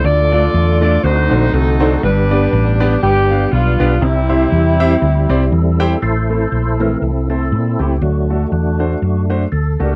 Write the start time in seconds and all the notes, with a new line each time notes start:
0.03 D2 D3 A3 D4 F4 A4 D5
0.32 A3 D4 F4 A4 D5
0.54 E2
0.81 A3 D4 F4 A4 D5
1.04 D2 D3 A3 C4 D#4 F#4 C5
1.31 A#1 D4 D#4 F#4 A4 C5
1.53 C2 C4 F#4 A4
1.80 D4 D#4 F#4 A4 C5
2.03 G1 G2 G3 B3 D4 G4 B4
2.31 B3 D4 G4 B4 D5
2.53 A1
2.80 B3 D4 G4 B4 D5
3.03 G1 B3 D4 G4
3.30 B3 D4 G4 B4 F5
3.52 B1 B3 D4 F4
3.80 B1 B3 D4 G4 B4 D5
4.01 C2 C3 G3 C4 D#4 E4
4.08 E4
4.29 C4 E4 G4 C5 E5
4.52 E2
4.80 C4 E4 G4 C5 E5
5.02 D2
5.29 C2 C4 E4 G4 C5 D5
5.52 E2 C4 E4 A4
5.80 C4 E4 G4 C5 G5
6.02 A1 A2 E4 A4 C5
6.30 A3 C4 E4 A4
6.52 A#1
6.80 E3 A3 C4 E4 A#4 C5
7.02 C2 C4 E4 A4
7.30 A3 C4 E4 A4 C5
7.52 A#2
7.79 C#2 A3 C4 E4 G4 A4
8.02 D2 D3 F#3 A3 D4 F#4
8.30 A3 D4 F#4 A4
8.52 E2 A3 D4 F#4
8.79 A3 D4 F#4 C5
9.02 F#2
9.30 A3 D4 F#4 C5
9.52 D2 A4
9.80 C#2 A3 D4 F#4 G4 A4 A#4